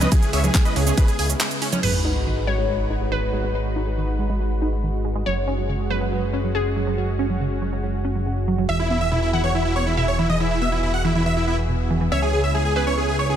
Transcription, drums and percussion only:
0.01 closed hi-hat medium
0.01 high conga medium
0.01 shaker medium
0.12 kick loud
0.12 closed hi-hat loud
0.12 ride medium
0.12 shaker medium
0.23 closed hi-hat medium
0.23 shaker soft
0.33 open hi-hat loud
0.44 closed hi-hat medium
0.44 high conga medium
0.44 shaker medium
0.55 kick loud
0.55 clap loud
0.55 closed hi-hat loud
0.55 ride medium
0.55 shaker medium
0.65 closed hi-hat medium
0.65 shaker soft
0.76 open hi-hat medium
0.87 closed hi-hat medium
0.87 shaker medium
0.97 kick loud
0.97 closed hi-hat loud
0.97 ride medium
0.97 shaker medium
1.08 closed hi-hat medium
1.08 shaker soft
1.19 open hi-hat loud
1.30 closed hi-hat medium
1.30 shaker medium
1.40 clap loud
1.40 closed hi-hat loud
1.40 ride medium
1.40 shaker medium
1.51 closed hi-hat medium
1.51 shaker soft
1.62 open hi-hat medium
1.72 closed hi-hat medium
1.72 high conga medium
1.72 shaker medium
1.83 crash medium

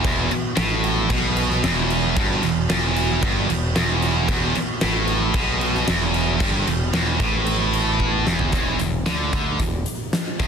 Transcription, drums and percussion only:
0.04 kick loud
0.04 crash medium
0.31 crash medium
0.57 snare loud
0.57 crash medium
0.84 crash medium
1.10 kick loud
1.10 crash medium
1.37 crash medium
1.51 snare soft
1.64 snare loud
1.64 crash medium
1.90 crash medium
2.17 kick loud
2.17 crash medium
2.43 crash medium
2.70 snare loud
2.70 crash medium
2.96 crash medium
3.22 kick loud
3.22 crash medium
3.50 crash medium
3.76 snare loud
3.76 crash medium
4.02 crash medium
4.29 kick loud
4.29 crash medium
4.55 snare soft
4.55 crash medium
4.81 snare loud
4.81 crash medium
5.08 crash medium
5.34 kick loud
5.34 crash medium
5.61 crash medium
5.75 snare soft
5.88 snare loud
5.88 crash medium
6.14 crash medium
6.40 kick loud
6.40 crash medium
6.67 snare soft
6.67 crash medium
6.94 snare loud
6.94 crash medium
7.20 kick loud
7.20 crash medium
7.46 crash medium
7.73 crash medium
8.00 kick medium
8.27 snare medium
8.39 floor tom medium
8.52 kick loud
8.52 closed hi-hat medium
8.79 closed hi-hat medium
9.06 snare loud
9.06 closed hi-hat medium
9.33 kick loud
9.33 closed hi-hat medium
9.60 kick loud
9.60 closed hi-hat medium
9.86 closed hi-hat medium
10.13 snare loud
10.13 closed hi-hat medium
10.40 kick loud
10.40 closed hi-hat medium

